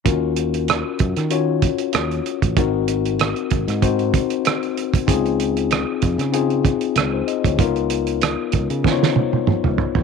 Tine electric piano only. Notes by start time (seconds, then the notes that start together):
0.05 C#4 F4 F#4 A#4
1.31 C#4 F4 F#4 C#5
2.56 C4 D#4 F#4 A#4
3.82 C4 D#4 F#4 C5
5.07 C4 D#4 F4 G#4
6.33 C4 D#4 F4 G#4
7.13 D#4 C5
7.28 D#5
7.45 F4 C#5
7.59 B3 D#4 F4 A#4
8.84 B3 D#4 F4 C5
8.92 C#5